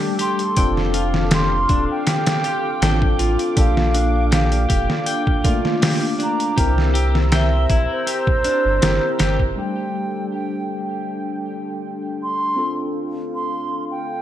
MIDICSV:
0, 0, Header, 1, 7, 480
1, 0, Start_track
1, 0, Tempo, 750000
1, 366, Time_signature, 4, 2, 24, 8
1, 9100, End_track
2, 0, Start_track
2, 0, Title_t, "Flute"
2, 0, Program_c, 0, 73
2, 135, Note_on_c, 0, 84, 93
2, 459, Note_off_c, 0, 84, 0
2, 856, Note_on_c, 0, 84, 93
2, 1180, Note_off_c, 0, 84, 0
2, 1224, Note_on_c, 0, 79, 98
2, 2201, Note_off_c, 0, 79, 0
2, 2295, Note_on_c, 0, 77, 97
2, 2725, Note_off_c, 0, 77, 0
2, 2777, Note_on_c, 0, 77, 88
2, 3101, Note_off_c, 0, 77, 0
2, 3989, Note_on_c, 0, 82, 95
2, 4306, Note_off_c, 0, 82, 0
2, 4703, Note_on_c, 0, 76, 90
2, 5023, Note_off_c, 0, 76, 0
2, 5066, Note_on_c, 0, 72, 99
2, 6042, Note_off_c, 0, 72, 0
2, 6140, Note_on_c, 0, 79, 76
2, 6568, Note_off_c, 0, 79, 0
2, 6615, Note_on_c, 0, 79, 79
2, 6939, Note_off_c, 0, 79, 0
2, 7827, Note_on_c, 0, 84, 73
2, 8145, Note_off_c, 0, 84, 0
2, 8542, Note_on_c, 0, 84, 76
2, 8863, Note_off_c, 0, 84, 0
2, 8902, Note_on_c, 0, 79, 81
2, 9100, Note_off_c, 0, 79, 0
2, 9100, End_track
3, 0, Start_track
3, 0, Title_t, "Analog synth pad"
3, 0, Program_c, 1, 89
3, 0, Note_on_c, 1, 69, 80
3, 0, Note_on_c, 1, 79, 71
3, 0, Note_on_c, 1, 86, 88
3, 347, Note_off_c, 1, 86, 0
3, 348, Note_off_c, 1, 79, 0
3, 376, Note_on_c, 1, 77, 74
3, 378, Note_on_c, 1, 86, 90
3, 2261, Note_off_c, 1, 69, 0
3, 2272, Note_off_c, 1, 77, 0
3, 2287, Note_on_c, 1, 62, 81
3, 2287, Note_on_c, 1, 77, 75
3, 4187, Note_off_c, 1, 62, 0
3, 4187, Note_off_c, 1, 77, 0
3, 4187, Note_off_c, 1, 86, 0
3, 4201, Note_on_c, 1, 72, 76
3, 4201, Note_on_c, 1, 88, 92
3, 4203, Note_on_c, 1, 82, 79
3, 6104, Note_off_c, 1, 72, 0
3, 6105, Note_off_c, 1, 88, 0
3, 6106, Note_off_c, 1, 82, 0
3, 6118, Note_on_c, 1, 79, 81
3, 6120, Note_on_c, 1, 69, 67
3, 6125, Note_on_c, 1, 62, 67
3, 8023, Note_off_c, 1, 79, 0
3, 8049, Note_on_c, 1, 77, 85
3, 9100, Note_off_c, 1, 62, 0
3, 9100, Note_off_c, 1, 69, 0
3, 9100, Note_off_c, 1, 77, 0
3, 9100, End_track
4, 0, Start_track
4, 0, Title_t, "Clean electric guitar"
4, 0, Program_c, 2, 27
4, 0, Note_on_c, 2, 67, 77
4, 113, Note_off_c, 2, 67, 0
4, 120, Note_on_c, 2, 67, 108
4, 266, Note_off_c, 2, 67, 0
4, 365, Note_on_c, 2, 79, 76
4, 594, Note_off_c, 2, 79, 0
4, 601, Note_on_c, 2, 65, 74
4, 832, Note_off_c, 2, 65, 0
4, 843, Note_on_c, 2, 67, 74
4, 987, Note_off_c, 2, 67, 0
4, 1084, Note_on_c, 2, 62, 79
4, 1314, Note_off_c, 2, 62, 0
4, 1322, Note_on_c, 2, 67, 76
4, 1553, Note_off_c, 2, 67, 0
4, 1566, Note_on_c, 2, 67, 97
4, 1709, Note_off_c, 2, 67, 0
4, 1803, Note_on_c, 2, 79, 76
4, 2033, Note_off_c, 2, 79, 0
4, 2041, Note_on_c, 2, 65, 76
4, 2272, Note_off_c, 2, 65, 0
4, 2282, Note_on_c, 2, 67, 78
4, 2427, Note_off_c, 2, 67, 0
4, 2524, Note_on_c, 2, 62, 75
4, 2754, Note_off_c, 2, 62, 0
4, 2760, Note_on_c, 2, 67, 79
4, 2992, Note_off_c, 2, 67, 0
4, 2999, Note_on_c, 2, 67, 102
4, 3145, Note_off_c, 2, 67, 0
4, 3241, Note_on_c, 2, 79, 78
4, 3472, Note_off_c, 2, 79, 0
4, 3482, Note_on_c, 2, 65, 78
4, 3713, Note_off_c, 2, 65, 0
4, 3723, Note_on_c, 2, 67, 76
4, 3867, Note_off_c, 2, 67, 0
4, 3961, Note_on_c, 2, 62, 76
4, 4192, Note_off_c, 2, 62, 0
4, 4201, Note_on_c, 2, 67, 80
4, 4432, Note_off_c, 2, 67, 0
4, 4440, Note_on_c, 2, 67, 111
4, 4586, Note_off_c, 2, 67, 0
4, 4686, Note_on_c, 2, 79, 76
4, 4915, Note_off_c, 2, 79, 0
4, 4925, Note_on_c, 2, 64, 74
4, 5154, Note_off_c, 2, 64, 0
4, 5163, Note_on_c, 2, 67, 84
4, 5307, Note_off_c, 2, 67, 0
4, 5405, Note_on_c, 2, 62, 76
4, 5634, Note_off_c, 2, 62, 0
4, 5643, Note_on_c, 2, 67, 80
4, 5873, Note_off_c, 2, 67, 0
4, 5880, Note_on_c, 2, 67, 108
4, 6026, Note_off_c, 2, 67, 0
4, 9100, End_track
5, 0, Start_track
5, 0, Title_t, "Tine electric piano"
5, 0, Program_c, 3, 4
5, 0, Control_c, 3, 64, 127
5, 0, Note_on_c, 3, 55, 80
5, 0, Note_on_c, 3, 57, 67
5, 0, Note_on_c, 3, 62, 70
5, 0, Note_on_c, 3, 67, 85
5, 336, Note_off_c, 3, 55, 0
5, 340, Note_off_c, 3, 57, 0
5, 342, Note_off_c, 3, 62, 0
5, 345, Note_off_c, 3, 67, 0
5, 362, Note_on_c, 3, 60, 99
5, 369, Note_on_c, 3, 62, 91
5, 374, Note_on_c, 3, 65, 86
5, 376, Control_c, 3, 64, 0
5, 378, Note_on_c, 3, 69, 112
5, 490, Control_c, 3, 64, 127
5, 1777, Note_off_c, 3, 60, 0
5, 1780, Note_off_c, 3, 62, 0
5, 1783, Note_off_c, 3, 65, 0
5, 1785, Note_off_c, 3, 69, 0
5, 1806, Note_on_c, 3, 60, 78
5, 1808, Note_on_c, 3, 62, 69
5, 1809, Note_on_c, 3, 65, 71
5, 1813, Note_on_c, 3, 69, 88
5, 2259, Note_off_c, 3, 60, 0
5, 2260, Note_off_c, 3, 62, 0
5, 2261, Note_off_c, 3, 65, 0
5, 2263, Note_off_c, 3, 69, 0
5, 2278, Note_on_c, 3, 58, 84
5, 2287, Note_on_c, 3, 62, 77
5, 2290, Note_on_c, 3, 65, 74
5, 2294, Control_c, 3, 64, 0
5, 2294, Note_on_c, 3, 69, 90
5, 2403, Control_c, 3, 64, 127
5, 3455, Note_off_c, 3, 58, 0
5, 3459, Note_off_c, 3, 62, 0
5, 3461, Note_off_c, 3, 65, 0
5, 3463, Note_off_c, 3, 69, 0
5, 3482, Note_on_c, 3, 58, 83
5, 3488, Note_on_c, 3, 62, 74
5, 3494, Note_on_c, 3, 65, 79
5, 3497, Note_on_c, 3, 57, 89
5, 4177, Note_off_c, 3, 58, 0
5, 4180, Note_off_c, 3, 62, 0
5, 4183, Note_off_c, 3, 65, 0
5, 4185, Note_off_c, 3, 57, 0
5, 4204, Note_on_c, 3, 60, 92
5, 4208, Note_on_c, 3, 64, 90
5, 4214, Note_on_c, 3, 67, 90
5, 4215, Control_c, 3, 64, 0
5, 4221, Note_on_c, 3, 70, 107
5, 4321, Control_c, 3, 64, 127
5, 5618, Note_off_c, 3, 60, 0
5, 5620, Note_off_c, 3, 64, 0
5, 5623, Note_off_c, 3, 67, 0
5, 5627, Note_off_c, 3, 70, 0
5, 5644, Note_on_c, 3, 60, 77
5, 5649, Note_on_c, 3, 64, 71
5, 5651, Note_on_c, 3, 67, 70
5, 5653, Note_on_c, 3, 70, 86
5, 6098, Note_off_c, 3, 60, 0
5, 6100, Note_off_c, 3, 64, 0
5, 6102, Note_off_c, 3, 67, 0
5, 6102, Note_off_c, 3, 70, 0
5, 6118, Note_on_c, 3, 55, 66
5, 6123, Note_on_c, 3, 57, 55
5, 6127, Note_on_c, 3, 62, 56
5, 6134, Control_c, 3, 64, 0
5, 6134, Note_on_c, 3, 67, 68
5, 6257, Control_c, 3, 64, 127
5, 8015, Note_off_c, 3, 55, 0
5, 8017, Note_off_c, 3, 57, 0
5, 8020, Note_off_c, 3, 62, 0
5, 8023, Note_off_c, 3, 67, 0
5, 8038, Note_on_c, 3, 60, 66
5, 8044, Note_on_c, 3, 62, 56
5, 8049, Note_on_c, 3, 65, 56
5, 8055, Control_c, 3, 64, 0
5, 8056, Note_on_c, 3, 69, 74
5, 8179, Control_c, 3, 64, 127
5, 9100, Note_off_c, 3, 60, 0
5, 9100, Note_off_c, 3, 62, 0
5, 9100, Note_off_c, 3, 65, 0
5, 9100, Note_off_c, 3, 69, 0
5, 9100, End_track
6, 0, Start_track
6, 0, Title_t, "Sub bass"
6, 0, Program_c, 4, 38
6, 365, Note_on_c, 4, 29, 99
6, 1064, Note_off_c, 4, 29, 0
6, 1084, Note_on_c, 4, 26, 91
6, 1197, Note_off_c, 4, 26, 0
6, 1801, Note_on_c, 4, 33, 99
6, 2017, Note_off_c, 4, 33, 0
6, 2044, Note_on_c, 4, 33, 87
6, 2157, Note_off_c, 4, 33, 0
6, 2287, Note_on_c, 4, 34, 99
6, 2985, Note_off_c, 4, 34, 0
6, 3007, Note_on_c, 4, 29, 87
6, 3118, Note_off_c, 4, 29, 0
6, 4211, Note_on_c, 4, 36, 106
6, 4907, Note_off_c, 4, 36, 0
6, 4927, Note_on_c, 4, 34, 85
6, 5038, Note_off_c, 4, 34, 0
6, 5534, Note_on_c, 4, 31, 87
6, 5634, Note_off_c, 4, 31, 0
6, 5646, Note_on_c, 4, 31, 78
6, 5758, Note_off_c, 4, 31, 0
6, 5885, Note_on_c, 4, 31, 90
6, 6098, Note_off_c, 4, 31, 0
6, 9100, End_track
7, 0, Start_track
7, 0, Title_t, "Drums"
7, 122, Note_on_c, 9, 42, 68
7, 186, Note_off_c, 9, 42, 0
7, 250, Note_on_c, 9, 42, 40
7, 314, Note_off_c, 9, 42, 0
7, 362, Note_on_c, 9, 42, 90
7, 365, Note_on_c, 9, 36, 109
7, 426, Note_off_c, 9, 42, 0
7, 429, Note_off_c, 9, 36, 0
7, 495, Note_on_c, 9, 38, 36
7, 559, Note_off_c, 9, 38, 0
7, 601, Note_on_c, 9, 42, 65
7, 665, Note_off_c, 9, 42, 0
7, 729, Note_on_c, 9, 38, 52
7, 793, Note_off_c, 9, 38, 0
7, 838, Note_on_c, 9, 42, 86
7, 841, Note_on_c, 9, 38, 121
7, 902, Note_off_c, 9, 42, 0
7, 905, Note_off_c, 9, 38, 0
7, 1082, Note_on_c, 9, 42, 65
7, 1084, Note_on_c, 9, 36, 102
7, 1146, Note_off_c, 9, 42, 0
7, 1148, Note_off_c, 9, 36, 0
7, 1323, Note_on_c, 9, 42, 77
7, 1326, Note_on_c, 9, 38, 99
7, 1387, Note_off_c, 9, 42, 0
7, 1390, Note_off_c, 9, 38, 0
7, 1450, Note_on_c, 9, 42, 75
7, 1453, Note_on_c, 9, 38, 101
7, 1514, Note_off_c, 9, 42, 0
7, 1517, Note_off_c, 9, 38, 0
7, 1563, Note_on_c, 9, 42, 69
7, 1627, Note_off_c, 9, 42, 0
7, 1806, Note_on_c, 9, 42, 90
7, 1809, Note_on_c, 9, 38, 123
7, 1870, Note_off_c, 9, 42, 0
7, 1873, Note_off_c, 9, 38, 0
7, 1932, Note_on_c, 9, 36, 94
7, 1996, Note_off_c, 9, 36, 0
7, 2043, Note_on_c, 9, 42, 70
7, 2107, Note_off_c, 9, 42, 0
7, 2171, Note_on_c, 9, 42, 43
7, 2235, Note_off_c, 9, 42, 0
7, 2283, Note_on_c, 9, 42, 88
7, 2285, Note_on_c, 9, 36, 114
7, 2347, Note_off_c, 9, 42, 0
7, 2349, Note_off_c, 9, 36, 0
7, 2414, Note_on_c, 9, 38, 56
7, 2478, Note_off_c, 9, 38, 0
7, 2525, Note_on_c, 9, 42, 67
7, 2589, Note_off_c, 9, 42, 0
7, 2765, Note_on_c, 9, 42, 94
7, 2768, Note_on_c, 9, 38, 122
7, 2829, Note_off_c, 9, 42, 0
7, 2832, Note_off_c, 9, 38, 0
7, 2892, Note_on_c, 9, 42, 41
7, 2956, Note_off_c, 9, 42, 0
7, 3007, Note_on_c, 9, 36, 94
7, 3007, Note_on_c, 9, 42, 72
7, 3071, Note_off_c, 9, 36, 0
7, 3071, Note_off_c, 9, 42, 0
7, 3134, Note_on_c, 9, 38, 52
7, 3198, Note_off_c, 9, 38, 0
7, 3241, Note_on_c, 9, 42, 85
7, 3305, Note_off_c, 9, 42, 0
7, 3373, Note_on_c, 9, 36, 88
7, 3437, Note_off_c, 9, 36, 0
7, 3485, Note_on_c, 9, 42, 66
7, 3486, Note_on_c, 9, 36, 95
7, 3549, Note_off_c, 9, 42, 0
7, 3550, Note_off_c, 9, 36, 0
7, 3616, Note_on_c, 9, 38, 44
7, 3680, Note_off_c, 9, 38, 0
7, 3727, Note_on_c, 9, 46, 89
7, 3730, Note_on_c, 9, 38, 120
7, 3791, Note_off_c, 9, 46, 0
7, 3794, Note_off_c, 9, 38, 0
7, 3967, Note_on_c, 9, 42, 66
7, 4031, Note_off_c, 9, 42, 0
7, 4096, Note_on_c, 9, 42, 43
7, 4160, Note_off_c, 9, 42, 0
7, 4209, Note_on_c, 9, 36, 103
7, 4209, Note_on_c, 9, 42, 88
7, 4273, Note_off_c, 9, 36, 0
7, 4273, Note_off_c, 9, 42, 0
7, 4340, Note_on_c, 9, 38, 36
7, 4404, Note_off_c, 9, 38, 0
7, 4449, Note_on_c, 9, 42, 65
7, 4513, Note_off_c, 9, 42, 0
7, 4577, Note_on_c, 9, 38, 52
7, 4641, Note_off_c, 9, 38, 0
7, 4684, Note_on_c, 9, 42, 87
7, 4687, Note_on_c, 9, 38, 127
7, 4748, Note_off_c, 9, 42, 0
7, 4751, Note_off_c, 9, 38, 0
7, 4925, Note_on_c, 9, 42, 71
7, 4926, Note_on_c, 9, 36, 95
7, 4989, Note_off_c, 9, 42, 0
7, 4990, Note_off_c, 9, 36, 0
7, 5166, Note_on_c, 9, 42, 89
7, 5230, Note_off_c, 9, 42, 0
7, 5294, Note_on_c, 9, 36, 95
7, 5358, Note_off_c, 9, 36, 0
7, 5404, Note_on_c, 9, 42, 67
7, 5468, Note_off_c, 9, 42, 0
7, 5646, Note_on_c, 9, 42, 86
7, 5650, Note_on_c, 9, 38, 112
7, 5710, Note_off_c, 9, 42, 0
7, 5714, Note_off_c, 9, 38, 0
7, 5884, Note_on_c, 9, 42, 77
7, 5887, Note_on_c, 9, 38, 107
7, 5948, Note_off_c, 9, 42, 0
7, 5951, Note_off_c, 9, 38, 0
7, 6013, Note_on_c, 9, 36, 81
7, 6077, Note_off_c, 9, 36, 0
7, 9100, End_track
0, 0, End_of_file